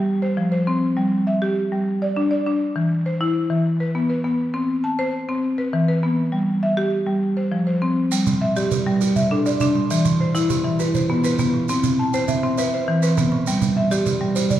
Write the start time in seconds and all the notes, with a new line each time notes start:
0.22 C5
0.37 F3
0.52 C5
0.67 C4
0.97 G3
1.27 E5
1.42 G4
1.72 G3
2.02 D5
2.17 D4
2.31 D5
2.46 D4
2.76 E3
3.06 C5
3.21 E4
3.50 E3
3.80 B4
3.95 B3
4.10 B4
4.24 B3
4.54 C4
4.84 A5
4.99 C5
5.29 C4
5.58 B4
5.73 E3
5.88 B4
6.03 B3
6.32 G3
6.63 E5
6.77 G4
7.07 G3
7.37 C5
7.52 F3
7.67 C5
7.82 C4
8.12 G3, shekere
8.27 G3, shekere
8.41 E5
8.56 G4 D5, shekere
8.71 G3 B4, shekere
8.86 G3
9.01 G4 B4, shekere
9.16 E5, shekere
9.31 D4 A4
9.46 D4 D5, shekere
9.60 D4 D5, shekere
9.75 G3
9.90 E3, shekere
10.05 E3, shekere
10.21 C5
10.35 E4 B4, shekere
10.50 E3 G4, shekere
10.65 E3
10.79 E4 G4 B4, shekere
10.94 C5, shekere
11.09 B3 F4
11.24 B3 B4, shekere
11.39 B3, shekere
11.54 E3
11.69 C4, shekere
11.83 C4, shekere
11.99 A5
12.13 C5 G5, shekere
12.28 C4 E5, shekere
12.43 C4
12.58 B4 C5 E5, shekere
12.74 C5
12.88 E3
13.03 E3 B4, shekere
13.17 B3 B4, shekere
13.32 E3
13.47 G3, shekere
13.62 G3, shekere
13.77 E5
13.91 G4 D5, shekere
14.06 G3 B4, shekere
14.21 G3
14.35 G4 B4 C5, shekere
14.50 D5, shekere